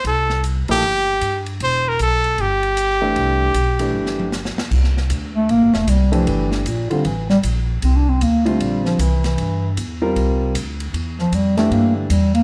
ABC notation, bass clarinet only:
X:1
M:4/4
L:1/8
Q:"Swing" 1/4=154
K:Cmix
V:1 name="Bass clarinet" clef=bass
z8 | z8 | z8 | z3 A, B, A, G, F, |
E, G,, B,, D, E, G, z2 | (3C D C B, A, G, F, E, E,- | E,2 z6 | z F, G, A, B, D, G, B, |]